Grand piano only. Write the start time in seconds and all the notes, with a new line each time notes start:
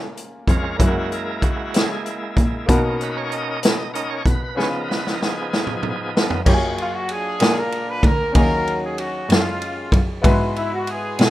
Already playing: A#2 A#3 C#4 F4 G#4 A#4
0.77 A#3 C#4 E4 F#4
0.81 G#4
0.88 A#4
2.66 B2 A#3 B3 D#4 F#4
2.70 A#4
4.55 C#3 B3 C#4 F4 G#4
4.60 B4
6.45 F#3 A#3 F4 G4 C#5
6.54 G#4
7.40 A#2 A#3 D4 F4 G#4 A#4
8.32 D#3 F#3 C#4 D#4 F5
8.37 G#4
10.22 G#2 G#3 B3 E4 F#4
10.26 B4